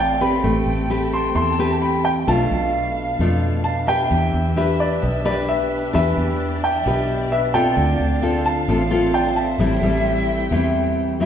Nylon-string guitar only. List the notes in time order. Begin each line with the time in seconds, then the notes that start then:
Already playing: A2 C4 F4 A4
0.21 C4 G4 B4
0.44 A3
0.90 C4 G4 B4
1.35 E3
1.59 C4 G4 B4
2.27 B2 A3 D4 F4
3.20 B2 A3 D4 F4
3.87 D4 G4 B4
4.11 E3
4.56 D4 G4 B4
5.02 B2
5.25 D4 G4 B4
5.93 E3 D4 G4 B4
6.86 B2 D4 G4 B4
7.54 C4 F4 A4
7.77 D3
8.22 C4 F4 A4
8.68 A2 C4 F4 A4
8.91 C4 F4 A4
9.59 A2 G3 C4 E4
9.83 G3 C4 E4
10.51 E3 G3 C4 E4
11.20 F#3 C4 E4